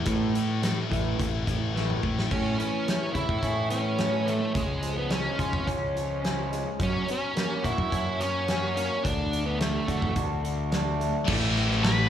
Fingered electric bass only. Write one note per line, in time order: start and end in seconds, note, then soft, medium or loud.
0.06 0.79 A2 loud
0.91 1.15 A1 medium
1.19 1.43 A1 medium
1.47 1.95 A1 medium
2.03 2.27 A2 medium
2.31 2.55 A2 medium
3.14 3.27 C#3 medium
3.29 3.41 A2 medium
3.42 4.39 A2 medium
4.55 5.28 C#2 loud
5.39 5.55 C#3 medium
5.53 5.65 G#1 medium
5.67 6.64 C#2 medium
6.79 7.04 F#2 medium
7.65 7.77 A#2 medium
7.78 7.90 F#2 medium
7.92 8.89 F#2 medium
9.05 9.77 D2 medium
9.88 10.04 D3 medium
10.02 10.14 A1 medium
10.16 11.12 D2 medium
11.28 12.09 A1 loud